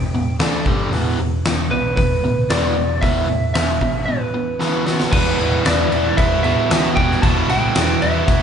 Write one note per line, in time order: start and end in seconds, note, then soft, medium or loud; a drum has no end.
0.00 0.12 E1 medium
0.00 0.11 E2 medium
0.00 0.11 B2 medium
0.00 0.36 G5 medium
0.13 0.39 E1 medium
0.13 0.38 E2 medium
0.13 0.38 B2 medium
0.39 0.65 D2 medium
0.39 0.64 D3 medium
0.39 0.65 A3 medium
0.39 0.65 D4 medium
0.39 snare loud
0.39 open hi-hat soft
0.66 0.91 G1 medium
0.66 0.91 G2 medium
0.66 0.91 D3 medium
0.66 0.92 G3 medium
0.66 kick loud
0.91 1.17 E1 medium
0.91 1.17 E2 medium
0.91 1.18 B2 medium
0.91 1.18 E3 loud
0.91 open hi-hat medium
1.18 1.43 E1 medium
1.18 1.43 E2 medium
1.18 1.43 B2 medium
1.44 1.70 E1 medium
1.44 1.69 E2 medium
1.44 1.69 B2 medium
1.44 snare loud
1.44 open hi-hat soft
1.71 1.96 B1 medium
1.71 1.95 E2 medium
1.71 1.95 B2 medium
1.71 1.95 B4 medium
1.96 2.22 E1 medium
1.96 2.22 E2 medium
1.96 2.22 B2 medium
1.96 2.51 B4 medium
1.96 kick loud
1.96 open hi-hat soft
2.23 2.49 D2 medium
2.23 2.48 E2 medium
2.23 2.48 B2 medium
2.50 2.75 E1 medium
2.50 2.75 E2 medium
2.50 2.75 B2 medium
2.50 2.75 E3 loud
2.50 3.01 D5 medium
2.50 snare loud
2.50 open hi-hat soft
2.77 3.02 E1 medium
2.77 3.00 E2 medium
2.77 3.00 B2 medium
3.01 3.53 E1 medium
3.01 3.27 E2 medium
3.01 3.28 B2 medium
3.01 3.28 E3 medium
3.01 3.53 E5 medium
3.01 kick loud
3.01 open hi-hat medium
3.28 3.52 E2 medium
3.28 3.53 B2 medium
3.54 3.80 E1 medium
3.54 3.79 E2 medium
3.54 3.79 B2 medium
3.54 4.04 E5 medium
3.54 snare loud
3.54 open hi-hat medium
3.81 4.07 A1 medium
3.81 4.05 E2 medium
3.81 4.06 B2 medium
3.81 kick medium
4.06 4.32 E2 medium
4.06 4.32 B2 medium
4.06 4.82 B4 medium
4.34 4.58 E2 medium
4.34 4.58 B2 medium
4.60 4.85 E2 medium
4.60 4.85 B2 medium
4.60 4.86 E3 medium
4.60 snare medium
4.86 5.11 B2 medium
4.86 5.11 F#3 medium
4.86 5.12 B3 medium
4.86 snare medium
5.00 snare medium
5.12 5.31 E1 medium
5.12 5.38 E2 loud
5.12 5.38 B2 loud
5.12 6.46 E3 medium
5.12 5.39 E3 loud
5.12 6.43 G3 medium
5.12 6.43 B3 medium
5.12 6.44 E4 medium
5.12 5.67 B4 medium
5.12 kick loud
5.12 crash loud
5.12 crash medium
5.38 5.58 E1 medium
5.38 5.64 E2 medium
5.38 5.64 B2 medium
5.38 5.65 E3 loud
5.38 crash medium
5.64 5.84 E1 medium
5.64 5.90 E2 medium
5.64 5.90 B2 medium
5.64 5.92 E3 medium
5.64 6.17 D5 medium
5.64 snare loud
5.64 crash medium
5.91 6.10 E1 medium
5.91 6.16 E2 medium
5.91 6.17 B2 medium
5.91 6.18 E3 medium
5.91 crash medium
6.17 6.54 E1 medium
6.17 6.43 E2 medium
6.17 6.44 B2 medium
6.17 6.45 E3 medium
6.17 6.42 E5 loud
6.17 kick loud
6.17 crash medium
6.43 6.70 E2 loud
6.43 6.71 B2 medium
6.43 6.72 E3 medium
6.43 6.69 E3 medium
6.43 6.70 G3 medium
6.43 6.69 B3 medium
6.43 6.71 E4 medium
6.43 6.98 E5 medium
6.43 crash medium
6.70 6.88 D2 medium
6.70 6.96 E2 medium
6.70 6.97 B2 medium
6.70 7.23 E3 medium
6.70 6.98 E3 medium
6.70 7.22 G3 medium
6.70 7.22 B3 medium
6.70 7.25 E4 medium
6.70 snare loud
6.70 crash medium
6.96 7.15 E1 medium
6.96 7.22 E2 medium
6.96 7.22 B2 medium
6.96 7.24 E3 medium
6.96 7.22 G5 loud
6.96 kick medium
6.96 crash medium
7.11 snare soft
7.22 7.41 E1 medium
7.22 7.49 E2 medium
7.22 7.49 B2 loud
7.22 8.43 E3 medium
7.22 7.50 E3 loud
7.22 8.43 G3 medium
7.22 8.43 B3 loud
7.22 8.43 E4 loud
7.22 7.50 A5 loud
7.22 kick loud
7.22 crash medium
7.50 7.68 B1 medium
7.50 7.75 E2 medium
7.50 7.75 B2 medium
7.50 7.76 E3 loud
7.50 8.04 G5 loud
7.50 crash medium
7.75 7.94 E1 medium
7.75 8.00 E2 medium
7.75 8.01 B2 loud
7.75 8.02 E3 medium
7.75 snare loud
7.75 crash medium
8.02 8.26 E2 medium
8.02 8.21 E2 medium
8.02 8.27 B2 medium
8.02 8.28 E3 loud
8.02 8.43 E5 loud
8.02 crash medium
8.27 8.43 E1 medium
8.27 8.43 E2 medium
8.27 8.43 B2 medium
8.27 8.43 E3 medium
8.27 kick loud
8.27 crash medium